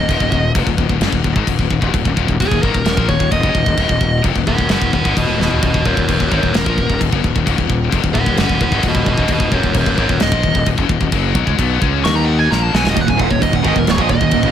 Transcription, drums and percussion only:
0.09 kick loud
0.09 crash medium
0.20 kick medium
0.32 kick medium
0.55 kick loud
0.55 crash medium
0.67 kick medium
0.78 kick medium
0.89 kick medium
1.01 snare loud
1.01 crash medium
1.12 kick medium
1.24 kick medium
1.36 kick medium
1.47 kick medium
1.47 crash medium
1.59 kick medium
1.70 kick medium
1.82 kick medium
1.94 kick medium
1.94 crash medium
2.05 kick medium
2.17 kick medium
2.28 kick medium
2.40 kick medium
2.40 crash medium
2.51 kick medium
2.63 kick medium
2.74 kick medium
2.85 snare loud
2.85 crash medium
2.97 kick loud
3.09 kick medium
3.20 kick medium
3.31 kick medium
3.31 crash medium
3.43 kick medium
3.55 kick medium
3.66 kick medium
3.77 kick medium
3.77 crash medium
3.89 kick medium
4.01 kick medium
4.24 kick loud
4.24 crash medium
4.36 kick medium
4.47 kick medium
4.58 kick medium
4.69 snare loud
4.69 crash medium
4.82 kick medium
4.93 kick medium
5.05 kick medium
5.17 kick medium
5.17 crash medium
5.41 snare medium
5.51 floor tom medium
5.63 kick loud
5.63 crash medium
5.74 kick medium
5.85 kick medium
5.97 kick medium
6.08 kick loud
6.08 crash medium
6.20 kick medium
6.32 kick medium
6.43 kick medium
6.54 snare loud
6.54 crash medium
6.66 kick loud
6.78 kick medium
6.90 kick medium
7.01 kick medium
7.01 crash medium
7.13 kick medium
7.24 kick medium
7.36 kick medium
7.47 kick loud
7.47 crash medium
7.58 kick medium
7.70 kick medium
7.92 kick loud
7.92 crash medium
8.04 kick medium
8.15 kick medium
8.26 kick medium
8.37 snare loud
8.37 crash medium
8.49 kick medium
8.61 kick medium
8.72 kick medium
8.83 kick medium
8.83 crash medium
8.95 kick medium
9.06 kick medium
9.18 kick medium
9.28 kick loud
9.28 crash medium
9.40 kick medium
9.52 kick medium
9.63 kick medium
9.74 kick medium
9.74 crash medium
9.86 kick medium
9.98 kick medium
10.09 kick medium
10.20 snare loud
10.20 crash medium
10.32 kick loud
10.43 kick medium
10.55 kick medium
10.66 kick medium
10.66 crash medium
10.78 kick medium
10.89 kick medium
11.01 kick medium
11.12 kick medium
11.12 crash medium
11.35 kick loud
11.47 kick medium
11.59 kick loud
11.59 crash medium
11.82 kick loud
12.05 snare loud
12.05 crash medium
12.52 snare medium
12.75 snare loud
12.87 snare loud
12.97 kick loud
12.97 crash medium
13.08 kick medium
13.20 kick loud
13.30 kick medium
13.42 kick medium
13.42 crash medium
13.53 kick medium
13.65 kick medium
13.76 kick medium
13.87 snare loud
13.87 crash medium
13.98 kick loud
14.09 kick medium
14.21 kick medium
14.31 kick medium
14.31 crash medium
14.43 kick medium

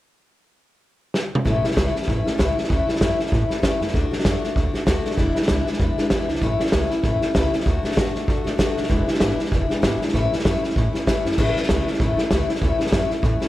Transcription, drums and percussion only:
1.14 snare medium
1.35 mid tom medium
1.46 kick loud
1.46 snare soft
1.64 snare soft
1.71 snare soft
1.77 kick medium
1.77 snare loud
1.77 hi-hat pedal medium
1.96 snare soft
2.02 snare soft
2.08 kick loud
2.08 snare soft
2.27 snare soft
2.39 kick medium
2.39 snare loud
2.39 hi-hat pedal medium
2.58 snare soft
2.64 snare soft
2.70 kick loud
2.70 snare soft
2.88 snare soft
2.96 snare soft
3.01 kick medium
3.01 snare loud
3.01 hi-hat pedal medium
3.20 snare soft
3.26 snare soft
3.32 kick loud
3.32 snare soft
3.50 snare soft
3.63 kick medium
3.63 snare loud
3.63 hi-hat pedal medium
3.81 snare soft
3.88 snare soft
3.94 kick loud
3.94 snare soft
4.13 snare soft
4.19 snare soft
4.25 kick medium
4.25 snare loud
4.25 hi-hat pedal medium
4.44 snare soft
4.56 kick loud
4.56 snare soft
4.74 snare soft
4.87 kick medium
4.87 snare medium
4.87 hi-hat pedal medium
5.05 snare soft
5.11 snare soft
5.17 kick loud
5.17 snare soft
5.35 snare soft
5.42 snare soft
5.48 kick medium
5.48 snare loud
5.48 hi-hat pedal medium
5.67 snare soft
5.73 snare soft
5.79 kick loud
5.79 snare soft
5.98 snare soft
6.10 kick medium
6.10 snare loud
6.10 hi-hat pedal medium
6.28 snare soft
6.35 snare soft
6.41 kick loud
6.41 snare soft
6.60 snare soft
6.66 snare soft
6.72 kick medium
6.72 snare loud
6.72 hi-hat pedal medium
6.90 snare soft
7.03 kick loud
7.03 snare soft
7.22 snare soft
7.35 kick medium
7.35 snare loud
7.35 hi-hat pedal medium
7.53 snare soft
7.60 snare soft
7.66 kick loud
7.66 snare soft
7.84 snare soft
7.91 snare soft
7.97 kick medium
7.97 snare loud
7.97 hi-hat pedal medium
8.15 snare soft
8.28 kick loud
8.28 snare soft
8.46 snare soft
8.59 kick medium
8.59 snare loud
8.59 hi-hat pedal medium
8.77 snare soft
8.83 snare soft
8.90 kick loud
8.90 snare soft
9.08 snare soft
9.14 snare soft
9.20 kick medium
9.20 snare loud
9.20 hi-hat pedal medium
9.39 snare soft
9.45 snare soft
9.52 kick loud
9.52 snare soft
9.70 snare soft
9.83 kick medium
9.83 snare loud
9.83 hi-hat pedal medium
10.01 snare soft
10.08 snare soft
10.14 kick loud
10.14 snare soft
10.33 snare soft
10.39 snare soft
10.45 kick medium
10.45 snare loud
10.45 hi-hat pedal medium
10.64 snare soft
10.70 snare soft
10.76 kick loud
10.76 snare soft
10.95 snare soft
11.07 kick medium
11.07 snare loud
11.07 hi-hat pedal medium
11.26 snare soft
11.32 snare soft
11.38 kick loud
11.38 snare soft
11.38 crash loud
11.56 snare soft
11.63 snare soft
11.69 kick medium
11.69 snare loud
11.69 hi-hat pedal medium
11.87 snare soft
11.93 snare soft
12.00 kick loud
12.00 snare soft
12.18 snare soft
12.31 kick medium
12.31 snare loud
12.31 hi-hat pedal medium
12.49 snare soft
12.55 snare soft
12.62 kick loud
12.62 snare soft
12.80 snare soft
12.86 snare soft
12.92 kick medium
12.92 snare loud
12.92 hi-hat pedal medium
13.11 snare soft
13.23 kick loud
13.23 snare soft
13.41 snare soft

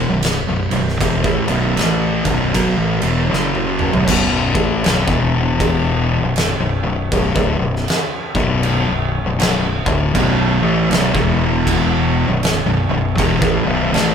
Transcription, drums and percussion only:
0.23 snare loud
0.23 ride medium
0.71 ride medium
0.89 snare soft
1.01 kick loud
1.01 ride medium
1.24 kick loud
1.48 ride medium
1.77 snare loud
1.77 ride medium
2.25 kick loud
2.25 ride medium
2.54 kick loud
2.54 ride medium
3.02 ride medium
3.33 snare medium
3.55 high tom medium
3.79 mid tom medium
3.94 floor tom medium
4.08 kick loud
4.08 crash loud
4.08 crash medium
4.55 kick loud
4.84 snare loud
4.84 crash medium
5.08 kick loud
5.60 kick loud
5.60 crash medium
6.36 snare loud
6.36 crash medium
7.12 kick loud
7.12 crash medium
7.36 kick loud
7.76 snare soft
7.88 snare loud
7.88 crash medium
8.35 kick loud
8.63 crash medium
9.40 snare loud
9.40 crash medium
9.86 kick loud
10.15 kick loud
10.15 crash medium
10.91 snare loud
10.91 crash medium
11.15 kick loud
11.67 kick loud
11.67 crash medium
12.43 snare loud
12.43 crash medium
13.18 kick loud
13.18 crash medium
13.42 kick loud
13.94 snare loud
13.94 crash medium

